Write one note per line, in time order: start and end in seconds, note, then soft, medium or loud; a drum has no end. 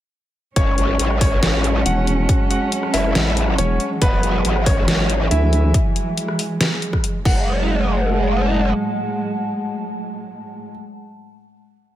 0.56 0.76 F#1 loud
0.56 7.21 F#3 medium
0.56 4.71 G#3 medium
0.56 7.21 G#3 medium
0.56 1.13 C#4 medium
0.56 3.98 C#4 medium
0.56 1.13 C#5 loud
0.56 kick loud
0.56 closed hi-hat medium
0.78 0.98 G#1 loud
0.78 4.71 F#5 medium
0.78 closed hi-hat medium
0.99 1.84 A1 loud
0.99 closed hi-hat medium
1.10 cross-stick medium
1.21 1.77 C#4 medium
1.21 1.77 C#5 loud
1.21 4.02 A5 medium
1.21 kick loud
1.21 open hi-hat loud
1.43 snare loud
1.43 closed hi-hat medium
1.64 closed hi-hat medium
1.86 2.27 E1 medium
1.86 2.42 F#4 medium
1.86 2.42 F#5 medium
1.86 closed hi-hat medium
2.07 closed hi-hat medium
2.29 kick loud
2.29 closed hi-hat medium
2.50 2.80 F#4 medium
2.50 2.80 F#5 medium
2.50 closed hi-hat medium
2.72 closed hi-hat medium
2.83 cross-stick medium
2.94 3.14 F#1 loud
2.94 3.50 E4 medium
2.94 3.50 E5 loud
2.94 open hi-hat medium
3.15 3.57 A1 loud
3.15 snare loud
3.15 closed hi-hat medium
3.37 closed hi-hat medium
3.48 cross-stick medium
3.58 3.78 E1 loud
3.58 3.88 C#4 medium
3.58 3.88 C#5 medium
3.58 closed hi-hat medium
3.80 closed hi-hat medium
4.02 4.22 E1 medium
4.02 7.22 E3 medium
4.02 4.58 B3 medium
4.02 5.74 F#4 medium
4.02 4.58 B4 loud
4.02 kick loud
4.02 closed hi-hat medium
4.23 4.43 F#1 loud
4.23 closed hi-hat medium
4.34 5.74 E5 medium
4.45 5.29 G#1 loud
4.45 closed hi-hat medium
4.56 cross-stick medium
4.66 5.23 C#4 medium
4.66 5.23 C#5 loud
4.66 kick loud
4.66 open hi-hat medium
4.80 5.74 G#5 medium
4.88 snare loud
4.88 closed hi-hat medium
5.10 closed hi-hat medium
5.31 5.73 D2 loud
5.31 5.74 E4 medium
5.31 5.74 E5 medium
5.31 closed hi-hat medium
5.53 closed hi-hat medium
5.74 kick loud
5.74 closed hi-hat medium
5.96 closed hi-hat medium
6.17 closed hi-hat medium
6.28 cross-stick medium
6.39 open hi-hat medium
6.61 snare loud
6.61 closed hi-hat medium
6.82 closed hi-hat medium
6.93 kick medium
6.93 cross-stick medium
7.04 closed hi-hat medium
7.25 8.72 F#1 medium
7.25 10.71 A2 medium
7.25 10.71 F#3 medium
7.25 10.71 G#3 medium
7.25 10.71 F#5 medium
7.25 kick loud
7.25 crash medium
7.32 10.78 F#5 medium
7.60 11.06 A5 medium